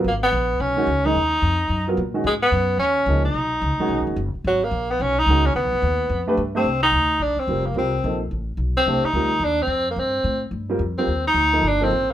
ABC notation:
X:1
M:4/4
L:1/8
Q:"Swing" 1/4=218
K:Blyd
V:1 name="Upright piano"
z4 z [D,G,CF] z [D,G,CD] | z4 z [F,B,EA] z [D,G,CF] | z6 [E,A,DG] z | z3 [D,G,CF]3 z2 |
z6 [D,G,CF] z | z4 z [=A,=D=GB] z [A,DG^B] | [K:Cdor] z6 [G,CFB] z | [G,CFB] z [F,B,EA] z4 z |
[A,DGc] z [G,CFB] z4 z | z4 z [G,CFB] z [G,CFB] | z3 [F,B,EA] z [F,B,EA] z2 |]
V:2 name="Tenor saxophone"
A, B,3 C3 D- | D4- D z3 | G, B,3 C3 D- | D4- D z3 |
F, A,2 B, C D2 C | B,6 z ^B,- | [K:Cdor] ^B, E3 D C2 _B, | C3 z4 C- |
C E3 D C2 B, | C3 z4 C- | C E3 D C2 z |]
V:3 name="Upright bass" clef=bass
G,,,2 A,,,2 B,,,2 C,,2 | D,,2 E,,2 F,,2 A,,2 | G,,2 F,,2 D,,2 C,,2 | B,,,2 C,, z (3B,,, G,,, F,,, F,,, z |
G,,,2 A,,,2 B,,,2 C,,2 | (3=D,, B,,, =G,,, ^D,,2 =F,,2 =G,,2 | [K:Cdor] C,,2 D,,2 B,,, z F,,,2 | C,,2 B,,,2 A,,,2 =B,,,2 |
C,, z D,,2 E,,2 F,,2 | G,,2 A,,2 G,,2 F,,2 | E,,2 D,,2 G,,,2 A,,,2 |]